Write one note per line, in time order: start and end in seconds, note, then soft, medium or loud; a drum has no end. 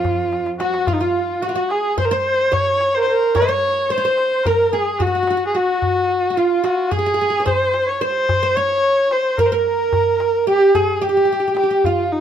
0.00 0.93 F2 medium
0.00 0.50 F4 medium
0.05 darbuka dum medium
0.33 darbuka tek medium
0.46 darbuka ka medium
0.58 0.87 F#4 medium
0.58 0.89 F#4 medium
0.58 darbuka tek medium
0.74 darbuka ka medium
0.86 1.00 F4 medium
0.86 0.99 F4 medium
0.86 0.95 F4 medium
0.86 darbuka dum medium
0.94 1.03 D#4 medium
1.01 1.42 F4 medium
1.01 1.43 F4 medium
1.01 1.44 F4 medium
1.15 darbuka ka soft
1.29 darbuka ka soft
1.42 1.72 F#4 medium
1.42 1.48 F#4 medium
1.42 1.73 F#4 medium
1.49 1.55 F4 medium
1.55 1.97 F#4 medium
1.70 2.00 G#4 medium
1.70 1.98 G#4 medium
1.70 darbuka tek medium
1.98 2.10 C5 medium
1.98 2.11 C5 medium
1.98 2.06 C5 medium
1.98 darbuka dum medium
2.05 2.14 A#4 medium
2.11 2.51 C5 medium
2.11 2.53 C5 medium
2.11 2.55 C5 loud
2.26 darbuka ka soft
2.52 2.96 C#5 medium
2.52 3.34 C#5 medium
2.52 2.96 C#5 loud
2.52 darbuka dum medium
2.81 darbuka tek medium
2.94 3.03 A#4 medium
2.94 2.99 C5 medium
2.94 2.98 C5 medium
3.00 3.36 C5 medium
3.00 3.10 C5 medium
3.09 3.37 A#4 medium
3.35 3.92 C#5 medium
3.35 3.41 C#5 medium
3.35 3.94 C#5 loud
3.35 darbuka dum medium
3.42 3.48 D#5 medium
3.49 3.90 C#5 medium
3.63 darbuka ka soft
3.77 darbuka ka soft
3.90 4.46 C5 medium
3.90 3.97 C5 medium
3.90 4.48 C5 loud
3.98 4.04 C#5 medium
4.05 4.46 C5 medium
4.17 darbuka tek medium
4.44 4.71 A#4 medium
4.44 4.72 A#4 medium
4.44 4.75 A#4 medium
4.44 darbuka dum medium
4.72 5.00 G#4 medium
4.72 5.01 G#4 medium
4.72 5.03 G#4 medium
4.72 darbuka ka soft
4.99 5.53 F#4 medium
4.99 5.06 F#4 medium
4.99 5.47 F#4 medium
4.99 darbuka dum medium
5.07 5.14 F#4 soft
5.15 5.22 F#4 medium
5.23 5.29 F#4 medium
5.27 5.36 F#4 medium
5.27 darbuka tek medium
5.37 5.45 F#4 medium
5.47 5.57 G#4 medium
5.53 6.06 F#4 medium
5.53 6.26 F#4 medium
5.53 6.39 F#4 medium
5.82 darbuka dum medium
6.10 darbuka ka soft
6.23 darbuka ka soft
6.30 6.37 F#4 medium
6.37 6.93 F4 medium
6.37 6.63 F4 medium
6.37 6.67 F4 medium
6.64 6.90 F#4 medium
6.64 6.94 F#4 medium
6.64 darbuka tek medium
6.91 7.48 G#4 medium
6.91 6.98 G#4 medium
6.91 7.48 G#4 loud
6.91 darbuka dum medium
6.99 7.05 G#4 medium
7.06 7.13 G#4 medium
7.14 7.20 G#4 medium
7.19 7.29 G#4 medium
7.19 darbuka ka soft
7.30 7.37 G#4 medium
7.40 7.45 C#5 medium
7.46 8.00 C5 medium
7.46 7.88 C5 medium
7.46 7.90 C5 medium
7.46 darbuka dum medium
7.74 darbuka tek medium
7.87 8.02 C#5 medium
7.87 8.04 C#5 medium
8.01 8.57 C5 loud
8.01 8.42 C5 medium
8.01 8.58 C5 loud
8.29 darbuka dum loud
8.43 8.56 C5 medium
8.55 9.10 C#5 loud
8.55 9.35 C#5 medium
8.55 9.14 C#5 loud
8.55 darbuka ka soft
8.70 darbuka ka soft
8.84 darbuka ka soft
9.11 9.36 C5 medium
9.11 9.42 C5 medium
9.11 darbuka tek medium
9.37 9.51 A#4 medium
9.37 9.47 A#4 medium
9.37 darbuka dum medium
9.46 9.56 C5 medium
9.52 10.44 A#4 medium
9.52 10.48 A#4 medium
9.66 darbuka ka soft
9.93 darbuka dum medium
10.20 darbuka tek medium
10.47 10.73 G4 medium
10.47 10.77 G4 loud
10.75 11.01 G#4 medium
10.75 10.96 G#4 medium
10.75 darbuka dum medium
10.96 11.04 G#4 medium
11.01 11.08 G4 medium
11.01 11.57 G4 loud
11.09 11.16 G4 medium
11.17 11.24 G4 medium
11.25 11.31 G4 medium
11.32 11.39 G4 medium
11.40 11.46 G4 soft
11.47 11.53 G4 medium
11.55 11.62 G4 soft
11.55 11.86 G4 medium
11.55 darbuka tek medium
11.63 11.69 G4 medium
11.71 11.78 G4 medium
11.84 12.14 F4 medium
11.84 12.20 F4 medium
11.84 darbuka dum medium
12.12 12.20 D#4 medium
12.12 darbuka ka soft